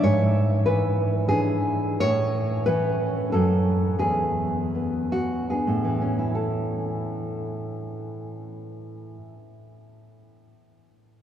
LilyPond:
\new Staff \with { instrumentName = "Nylon-string guitar" } { \time 3/4 \key a \major \tempo 4 = 78 << { cis''4 b'4 gis'4 | cis''4 b'4 a'4 | gis'4. fis'8 gis'4 | <a, e cis' e' a'>2.~ |
<a, e cis' e' a'>2. | } \\ { gis,4 e4 <e d'>4 | a,4 <e cis'>4 <fis, fis cis'>4 | e,4 b4 <b d'>4 | r2. |
r2. | } >> }